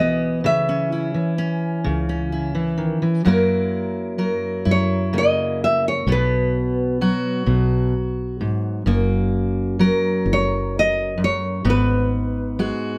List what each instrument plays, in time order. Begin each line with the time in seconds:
Already playing: fingered electric bass B1, steel-string acoustic guitar E3 E4
0.00 steel-string acoustic guitar B3, nylon-string guitar D#5
0.44 fingered electric bass C#2, steel-string acoustic guitar C#3, nylon-string guitar E5
0.69 steel-string acoustic guitar C#4
0.92 steel-string acoustic guitar E4
1.14 steel-string acoustic guitar E3
1.38 steel-string acoustic guitar C#4
1.84 fingered electric bass C#2, steel-string acoustic guitar C#3
2.09 steel-string acoustic guitar C#4
2.32 steel-string acoustic guitar E4
2.55 steel-string acoustic guitar E3
2.78 steel-string acoustic guitar D#3
3.02 steel-string acoustic guitar E3
3.25 steel-string acoustic guitar F#2 F#3 A#3 E4 A#4, fingered electric bass F#2
4.18 steel-string acoustic guitar F#3 A#4
4.65 fingered electric bass F#2, steel-string acoustic guitar E4
4.71 nylon-string guitar C#5
5.13 steel-string acoustic guitar C#3 A#3
5.18 nylon-string guitar D#5
5.64 nylon-string guitar E5
5.88 nylon-string guitar C#5
6.07 fingered electric bass B1, steel-string acoustic guitar B2 B3
6.12 nylon-string guitar B4
7.01 steel-string acoustic guitar F#3 F#4
7.46 fingered electric bass B1, steel-string acoustic guitar B2
8.41 steel-string acoustic guitar G#2
8.86 fingered electric bass F#1, steel-string acoustic guitar F#2 A#3
9.79 steel-string acoustic guitar F#3 A#4
10.26 fingered electric bass F#1
10.33 nylon-string guitar C#5
10.79 nylon-string guitar D#5
11.18 steel-string acoustic guitar F#2
11.24 nylon-string guitar C#5
11.65 fingered electric bass G#1, steel-string acoustic guitar G#2 B3
11.70 nylon-string guitar B4
12.59 steel-string acoustic guitar G#3 F#4